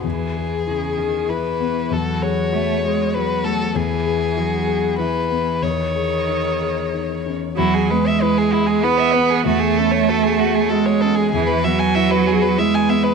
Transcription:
<<
  \new Staff \with { instrumentName = "Violin" } { \time 3/4 \key e \major \tempo 4 = 96 gis'2 b'4 | a'8 cis''4. b'8 a'8 | gis'2 b'4 | cis''2~ cis''8 r8 |
e'16 gis'16 b'16 e''16 b'16 gis'16 e'16 gis'16 b'16 e''16 b'16 gis'16 | fis'16 gis'16 a'16 cis''16 a'16 gis'16 fis'16 gis'16 a'16 cis''16 a'16 gis'16 | gis'16 b'16 e''16 gis''16 e''16 b'16 gis'16 b'16 e''16 gis''16 e''16 b'16 | }
  \new Staff \with { instrumentName = "Grand piano" } { \time 3/4 \key e \major e,8 gis'8 e'8 gis'8 e'8 b8 | e,8 gis'8 fis'8 gis'8 fis'8 a8 | e,8 gis'8 e'8 gis'8 e'8 b8 | e,8 gis'8 dis'8 gis'8 dis'8 cis'8 |
e,8 b8 e'8 gis'8 e'8 b8 | e,8 cis'8 fis'8 gis'8 fis'8 cis'8 | e,8 b8 e'8 gis'8 e'8 b8 | }
  \new Staff \with { instrumentName = "Cello" } { \clef bass \time 3/4 \key e \major e4 cis8 dis8 e4 | fis4 a8 gis8 fis4 | e4 fis4 e4 | dis2~ dis8 r8 |
fis8 gis4. b4 | a2 gis4 | e8 fis4. gis4 | }
>>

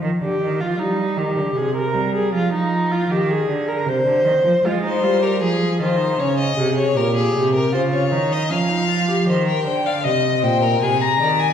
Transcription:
<<
  \new Staff \with { instrumentName = "Violin" } { \time 3/4 \key f \minor \tempo 4 = 78 r2. | r2. | r2. | r2. |
r16 g''8 f''16 ees''8 g''8 aes''16 bes''8 aes''16 | }
  \new Staff \with { instrumentName = "Violin" } { \time 3/4 \key f \minor r2. | r2. | r16 c''8 bes'16 aes'8 c''8 des''16 ees''8 des''16 | bes'16 aes'8 bes'16 c''16 des''8 ees''16 f''4 |
c''16 bes'16 c''16 d''16 ees''8 c''16 bes'16 aes'8 d''8 | }
  \new Staff \with { instrumentName = "Viola" } { \time 3/4 \key f \minor r16 g'8 f'16 ees'8 g'8 aes'16 bes'8 aes'16 | f'16 ees'8 f'16 g'16 aes'8 bes'16 c''4 | f'16 ees'16 f'16 g'16 aes'8 f'16 ees'16 des'8 aes'8 | g'4 f'8 ees'8 des'16 ees'16 f'16 g'16 |
r2. | }
  \new Staff \with { instrumentName = "Cello" } { \clef bass \time 3/4 \key f \minor ees16 d16 ees16 f16 g8 ees16 d16 c8 g8 | f4 ees8 d8 c16 d16 ees16 f16 | aes8 g8 f8 ees8 des8 c8 | bes,8 c8 des8 ees8 f4 |
ees8 d8 c8 bes,8 c8 ees8 | }
>>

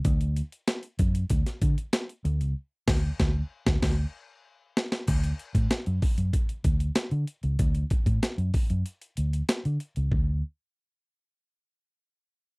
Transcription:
<<
  \new Staff \with { instrumentName = "Fingered electric bass" } { \clef bass \time 4/4 \key d \major \tempo 4 = 95 d,8. r8. fis,8 d,16 r16 d16 r8. d,16 cis,16 | r8 d,8 d,8 r16 d,16 d,8 r4. | d,8 r16 a,16 r16 fis,16 r16 fis,16 r8 d,8 r16 d16 r16 cis,16 | d,8 r16 a,16 r16 fis,16 r16 fis,16 r8 d,8 r16 d16 r16 cis,16 |
d,8 r2. r8 | }
  \new DrumStaff \with { instrumentName = "Drums" } \drummode { \time 4/4 <hh bd>16 hh16 hh16 hh16 <hh sn>16 hh16 <hh bd>16 hh16 <hh bd>16 <hh sn>16 <hh bd>16 hh16 <hh sn>16 hh16 hh16 hh16 | r8 <cymc bd sn>8 <bd sn>8. <bd sn>16 <cymc bd sn>4 r8 sn16 sn16 | <cymc hh bd>16 hh16 hh16 <hh bd>16 <hh sn>16 hh16 <hho bd>16 hh16 <hh bd>16 hh16 <hh bd>16 hh16 <hh sn>16 hh16 hh16 hh16 | <hh bd>16 hh16 <hh bd>16 <hh bd>16 <hh sn>16 hh16 <hho bd>16 hh16 hh16 hh16 hh16 hh16 <hh sn>16 hh16 hh16 hh16 |
bd4 r4 r4 r4 | }
>>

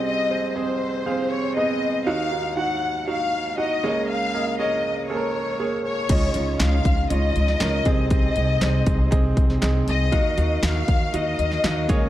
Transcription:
<<
  \new Staff \with { instrumentName = "Violin section" } { \time 4/4 \key des \major \tempo 4 = 119 ees''4 c''4. des''8 ees''4 | f''4 ges''4 f''4 ees''4 | f''4 ees''4 des''4. des''8~ | des''4 f''4 ees''2 |
ees''2 r4. ees''8~ | ees''4 f''4 ees''2 | }
  \new Staff \with { instrumentName = "Upright piano" } { \time 4/4 \key des \major <c' aes' ees''>8 <c' aes' c''>8 <c' aes' ees''>4 <c' aes' f''>4 <ces' c' aes' ees''>4 | <ees' ges' f''>8 <ees' ges' f''>8 <ees' ges' ges''>4 <ees' ges' f''>4 <ees' ges' ges''>8 <bes aes' des''>8~ | <bes aes' des''>8 <bes aes' ees''>8 <bes aes' des''>4 <bes aes' a' bes'>4 <bes aes' des''>4 | <des' f' ees''>8 <des' f' ees''>8 <des' f' ees''>4 <des' f' ees''>4 <des' f' bes'>8 <c' aes' ees''>8~ |
<c' aes' ees''>8 <c' aes' ees''>8 <c' aes' c''>4 <c' aes' ees''>4 <c' aes' ees''>4 | <ees' ges' f''>8 <ees' ges' f''>8 <ees' ges' f''>4 <ees' ges' f''>4 <ees' ges' f''>8 <bes aes' des''>8 | }
  \new Staff \with { instrumentName = "Upright piano" } { \clef bass \time 4/4 \key des \major <c, c>2.~ <c, c>8 r8 | <ees, ees>2.~ <ees, ees>8 <des, des>8~ | <des, des>2.~ <des, des>8 r8 | des4. r2 c8~ |
c4 r2. | ees4. r2 des8 | }
  \new Staff \with { instrumentName = "Tonewheel organ" } { \time 4/4 \key des \major << { r1 | r1 | r1 | ees'1~ |
ees'1 | f''2.~ f''8 des'8 | } \\ { r1 | r1 | r1 | des'2.~ des'8 c'8~ |
c'1 | bes1 | } >> }
  \new Staff \with { instrumentName = "Tonewheel organ" } { \time 4/4 \key des \major r1 | r1 | r1 | <des f'>2.~ <des f'>8 <c aes'>8~ |
<c aes'>1 | <ees ges'>2.~ <ees ges'>8 <des aes'>8 | }
  \new Staff \with { instrumentName = "Upright bass" } { \clef bass \time 4/4 \key des \major r1 | r1 | r1 | des,8 des,8 des,8 des,8 des,8 des,8 des,8 c,8~ |
c,8 c,8 c,8 c,8 c,8 c,8 c,8 c,8 | ees,8 ees,8 ees,8 ees,8 ees,8 ees,8 ees,8 des,8 | }
  \new DrumStaff \with { instrumentName = "Drums" } \drummode { \time 4/4 r4 r4 r4 r4 | r4 r4 r4 r4 | r4 r4 r4 r4 | <cymc hh bd>8 hh8 <hc hh sn>8 <hh bd>8 hh8 hh16 sn16 <hc hh sn>8 <hh bd>8 |
<hh bd>8 hh8 <hc hh sn>8 <hh bd>8 <hh bd>8 <hh bd>16 sn16 <hc hh sn>8 hh8 | <hh bd>8 hh8 <hc hh sn>8 <hh bd>8 hh8 hh16 sn16 <hc hh sn>8 <hh bd>8 | }
>>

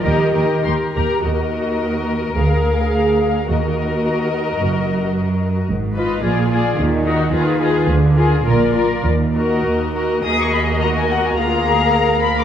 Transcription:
<<
  \new Staff \with { instrumentName = "Violin section" } { \time 2/4 \key ees \major \tempo 4 = 106 ees''8 ees''8 c'''8 bes''8 | \key ees \minor ees''2 | f''2 | ees''2~ |
ees''2 | r8 ees''8 d''8 d''8 | r8 bes'8 ces''8 ces''8 | r8 bes'8 d''8 d''8 |
r8 ees''4 ees''8 | ees'''16 des'''16 ces'''8 bes''16 aes''16 ges''16 aes''16 | bes''4. ces'''16 d'''16 | }
  \new Staff \with { instrumentName = "Violin section" } { \time 2/4 \key ees \major << { bes'8 bes'8 bes'8 bes'8 | \key ees \minor bes'2~ | bes'2 | bes'2~ |
bes'2 | r8 ces''8 aes'8 aes'8 | r8 ges'8 aes'8 aes'8 | r8 aes'8 bes'8 bes'8 |
r8 bes'4 bes'8 | ees''2 | f''2 | } \\ { r2 | r2 | r2 | r2 |
r2 | r2 | r2 | r2 |
r2 | bes'2~ | bes'2 | } >> }
  \new Staff \with { instrumentName = "Viola section" } { \time 2/4 \key ees \major << { r2 | \key ees \minor r2 | r2 | r2 |
r2 | r2 | r2 | r2 |
r2 | ges'2 | aes'2 | } \\ { g'8 g'8 g'8 g'8 | ges'2 | aes'2 | ges'2~ |
ges'2 | r8 f'8 f'8 f'8 | r8 ees'8 f'8 f'8 | r8 f'8 f'8 f'8 |
r8 ges'4 ges'8 | bes2~ | bes2 | } >> }
  \new Staff \with { instrumentName = "Cello section" } { \clef bass \time 2/4 \key ees \major ees4 r4 | \key ees \minor ees,2 | d,2 | ees,2 |
ges,2 | aes,4 bes,4 | ees4 ees4 | d4 bes,4 |
ees,4 ees,4 | aes'4 ges'4 | f'8 aes'8 bes'4 | }
  \new Staff \with { instrumentName = "Double bass section" } { \clef bass \time 2/4 \key ees \major ees,8 ees,8 ees,8 ees,8 | \key ees \minor ees,4 r4 | d,4 r4 | ees,4 r4 |
ges,,4 r4 | aes,,4 bes,,4 | ees,4 ees,4 | d,4 bes,,4 |
ees,4 r4 | ees,2 | d,2 | }
>>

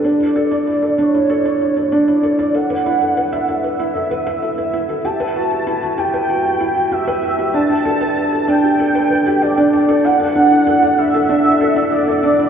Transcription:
<<
  \new Staff \with { instrumentName = "Soft synth lead" } { \time 4/4 \key d \major \tempo 4 = 96 d''4. cis''4. d''4 | fis''4. e''4. e''4 | a''4. g''4. e''4 | a''4. g''4. d''4 |
fis''4. e''4. d''4 | }
  \new Staff \with { instrumentName = "Felt piano" } { \time 4/4 \key d \major d'16 e'16 a'16 d''16 e'16 a'16 d'16 e'16 a'16 d''16 e'16 a'16 d'16 e'16 a'16 d''16 | a'16 b'16 e'16 a'16 b'16 e''16 a'16 b'16 e'16 a'16 b'16 e''16 a'16 b'16 e'16 a'16 | g'16 b'16 fis'16 g'16 e'16 fis'16 g'16 b'16 fis'16 g'16 e'16 fis'16 g'16 b'16 fis'16 g'16 | d'16 g'16 a'16 b'16 g'16 a'16 d'16 g'16 a'16 b'16 b'16 g'16 g'16 d'16 a''16 a'16 |
e'16 a'16 d'16 e'16 a'16 d''16 e'16 a'16 d'16 e'16 a'16 d''16 e'16 a'16 d'16 e'16 | }
>>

